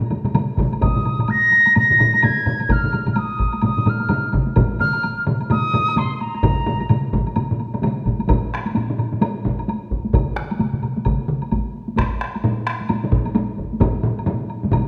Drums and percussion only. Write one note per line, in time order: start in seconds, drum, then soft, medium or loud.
0.01 taiko low-mid medium
0.10 taiko low-mid medium
0.10 taiko mid medium
0.10 taiko high soft
0.10 high woodblock soft
0.24 taiko low-mid medium
0.24 taiko mid medium
0.24 taiko high soft
0.24 high woodblock soft
0.34 taiko low-mid medium
0.34 taiko mid medium
0.34 taiko high medium
0.34 high woodblock medium
0.57 taiko medium
0.57 taiko low-mid medium
0.57 taiko mid medium
0.57 taiko high soft
0.57 high woodblock soft
0.72 taiko high medium
0.72 high woodblock soft
0.81 taiko medium
0.81 taiko low-mid medium
0.81 taiko mid medium
0.81 taiko high medium
0.81 high woodblock medium
0.96 taiko low-mid medium
0.96 taiko mid medium
1.05 taiko low-mid medium
1.05 taiko mid medium
1.05 taiko high medium
1.05 high woodblock soft
1.19 taiko low-mid medium
1.19 taiko mid medium
1.19 high woodblock soft
1.28 taiko high medium
1.28 high woodblock medium
1.52 taiko high soft
1.52 high woodblock soft
1.66 taiko high soft
1.66 high woodblock soft
1.75 taiko low-mid medium
1.75 taiko mid medium
1.75 taiko high medium
1.75 high woodblock medium
1.90 taiko low-mid medium
1.90 taiko mid medium
1.99 taiko low-mid medium
1.99 taiko mid medium
1.99 taiko high soft
1.99 high woodblock soft
2.13 taiko high soft
2.13 high woodblock soft
2.22 taiko low-mid medium
2.22 taiko mid medium
2.22 taiko high medium
2.22 high woodblock medium
2.46 taiko low-mid medium
2.46 taiko mid medium
2.46 taiko high medium
2.46 high woodblock soft
2.60 taiko high medium
2.60 high woodblock soft
2.69 taiko medium
2.69 taiko low-mid medium
2.69 taiko mid medium
2.69 taiko high medium
2.69 high woodblock medium
2.83 taiko low-mid medium
2.83 taiko mid medium
2.93 taiko low-mid medium
2.93 taiko mid medium
2.93 taiko high medium
2.93 high woodblock soft
3.06 taiko low-mid medium
3.06 taiko mid medium
3.06 taiko high soft
3.06 high woodblock soft
3.16 taiko high medium
3.16 high woodblock medium
3.39 taiko medium
3.39 taiko high soft
3.39 high woodblock soft
3.53 taiko high soft
3.53 high woodblock soft
3.61 taiko low-mid medium
3.61 taiko mid medium
3.61 taiko high medium
3.61 high woodblock medium
3.77 taiko low-mid medium
3.77 taiko mid medium
3.86 taiko low-mid medium
3.86 taiko mid medium
3.86 taiko high soft
3.86 high woodblock soft
4.00 taiko high soft
4.00 high woodblock soft
4.09 taiko low-mid medium
4.09 taiko mid medium
4.09 taiko high medium
4.09 high woodblock medium
4.32 taiko medium
4.32 taiko low-mid medium
4.32 taiko mid medium
4.32 taiko high medium
4.32 high woodblock soft
4.47 taiko high medium
4.56 taiko medium
4.56 taiko low-mid medium
4.56 taiko mid medium
4.56 taiko high medium
4.56 high woodblock medium
4.79 taiko low-mid medium
4.79 taiko mid medium
4.79 taiko high medium
4.79 high woodblock soft
4.93 taiko high soft
4.93 high woodblock soft
5.03 taiko high medium
5.03 high woodblock medium
5.26 taiko low-mid medium
5.26 taiko mid medium
5.26 taiko high soft
5.26 high woodblock soft
5.41 taiko high soft
5.41 high woodblock soft
5.50 taiko low-mid medium
5.50 taiko mid medium
5.50 taiko high medium
5.50 high woodblock medium
5.73 taiko low-mid medium
5.73 taiko mid medium
5.73 taiko high medium
5.73 high woodblock soft
5.88 high woodblock soft
5.97 taiko low-mid medium
5.97 taiko mid medium
5.97 taiko high medium
5.97 high woodblock medium
6.21 taiko high medium
6.21 high woodblock soft
6.35 taiko high soft
6.35 high woodblock soft
6.43 taiko loud
6.43 taiko low-mid medium
6.43 taiko mid medium
6.43 taiko high medium
6.43 high woodblock medium
6.66 taiko low-mid medium
6.66 taiko mid medium
6.66 taiko high medium
6.66 high woodblock soft
6.80 taiko high soft
6.80 high woodblock soft
6.89 taiko low-mid medium
6.89 taiko mid medium
6.89 taiko high medium
6.89 high woodblock medium
7.13 taiko medium
7.13 taiko low-mid medium
7.13 taiko mid medium
7.13 taiko high soft
7.13 high woodblock soft
7.27 taiko high soft
7.27 high woodblock soft
7.36 taiko low-mid medium
7.36 taiko mid medium
7.36 taiko high medium
7.36 high woodblock medium
7.51 taiko low-mid medium
7.51 taiko mid medium
7.60 taiko high medium
7.60 high woodblock soft
7.74 taiko low-mid medium
7.74 taiko mid medium
7.74 taiko high soft
7.74 high woodblock soft
7.82 taiko low-mid medium
7.82 taiko mid medium
7.82 taiko high medium
7.82 high woodblock soft
8.05 taiko medium
8.05 taiko low-mid medium
8.05 taiko mid medium
8.05 taiko high medium
8.05 high woodblock soft
8.19 taiko high soft
8.19 high woodblock soft
8.28 taiko loud
8.28 taiko low-mid medium
8.28 taiko high medium
8.28 high woodblock medium
8.54 taiko rim medium
8.66 taiko high medium
8.66 high woodblock soft
8.75 taiko low-mid medium
8.75 taiko high medium
8.75 high woodblock soft
8.90 taiko low-mid medium
8.98 taiko low-mid medium
8.98 high woodblock soft
9.12 taiko low-mid medium
9.12 taiko high medium
9.21 taiko low-mid loud
9.21 taiko high medium
9.21 high woodblock medium
9.45 taiko medium
9.45 taiko low-mid medium
9.59 taiko high medium
9.59 high woodblock soft
9.68 taiko high medium
9.68 high woodblock soft
9.91 taiko medium
10.05 taiko high medium
10.13 taiko medium
10.13 taiko mid loud
10.13 taiko high medium
10.13 high woodblock medium
10.36 taiko rim medium
10.51 taiko high medium
10.51 high woodblock soft
10.59 taiko mid medium
10.59 taiko high medium
10.59 high woodblock soft
10.73 taiko mid medium
10.82 taiko mid medium
10.82 high woodblock soft
10.96 taiko mid medium
10.96 taiko high medium
11.05 taiko medium
11.05 taiko mid medium
11.05 taiko high medium
11.05 high woodblock soft
11.29 taiko mid loud
11.42 taiko high medium
11.42 high woodblock soft
11.52 taiko medium
11.52 taiko high medium
11.52 high woodblock soft
11.88 taiko high medium
11.97 taiko rim medium
11.97 taiko medium
11.97 taiko high medium
11.97 high woodblock medium
12.21 taiko rim medium
12.35 taiko high soft
12.35 high woodblock soft
12.44 taiko low-mid medium
12.44 taiko high medium
12.44 high woodblock soft
12.66 taiko rim medium
12.66 high woodblock soft
12.81 taiko high medium
12.89 taiko low-mid medium
12.89 taiko high medium
12.89 high woodblock medium
13.04 taiko low-mid medium
13.12 taiko medium
13.12 taiko low-mid medium
13.25 taiko high medium
13.25 high woodblock soft
13.35 taiko low-mid loud
13.35 taiko high medium
13.35 high woodblock soft
13.58 taiko medium
13.73 taiko high medium
13.81 taiko medium
13.81 taiko low-mid loud
13.81 taiko mid loud
13.81 taiko high medium
13.81 high woodblock medium
14.03 taiko low-mid medium
14.03 taiko mid medium
14.19 taiko high medium
14.19 high woodblock soft
14.26 taiko low-mid medium
14.26 taiko mid loud
14.26 taiko high medium
14.26 high woodblock soft
14.50 high woodblock soft
14.63 taiko low-mid medium
14.63 taiko mid medium
14.63 taiko high medium
14.71 taiko medium
14.71 taiko low-mid loud
14.71 taiko mid loud
14.71 taiko high medium
14.71 high woodblock medium